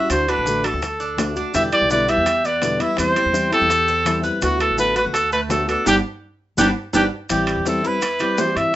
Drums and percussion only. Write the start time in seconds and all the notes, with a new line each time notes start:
0.10 high bongo, high timbale, maracas
0.28 high bongo, high timbale, maracas
0.46 high bongo, maracas
0.64 high timbale, maracas
0.82 high bongo, high timbale, maracas
1.00 high bongo, maracas
1.18 high bongo, low bongo, high timbale, low timbale, maracas
1.36 high bongo, maracas
1.54 high bongo, high timbale, maracas
1.72 high timbale, maracas
1.90 high bongo, maracas
2.09 high timbale, maracas
2.26 high bongo, high timbale, maracas
2.45 maracas
2.62 high bongo, low bongo, high timbale, maracas
2.80 high timbale, maracas
2.97 high bongo, high timbale, maracas
3.16 high bongo, high timbale, maracas
3.34 high bongo, maracas
3.53 high timbale, maracas
3.70 high bongo, high timbale, maracas
3.88 high bongo, maracas
4.06 high bongo, low bongo, high timbale, maracas
4.24 high bongo, maracas
4.42 high bongo, high timbale, maracas
4.60 high timbale, maracas
4.78 high bongo, maracas
4.96 high timbale, maracas
5.14 high bongo, high timbale, maracas
5.32 maracas
5.50 high bongo, low bongo, high timbale, low timbale, maracas
5.69 high timbale, maracas
5.86 low bongo, high timbale, maracas
6.58 low bongo, high timbale, maracas
6.93 low bongo, high timbale, maracas
7.29 high bongo, high timbale, maracas
7.47 high bongo, high timbale, maracas
7.65 high bongo, low timbale, maracas
7.85 high bongo, maracas
8.02 high bongo, high timbale, maracas
8.19 high bongo, high timbale, maracas
8.38 high bongo, low bongo, low timbale, maracas
8.57 high timbale, maracas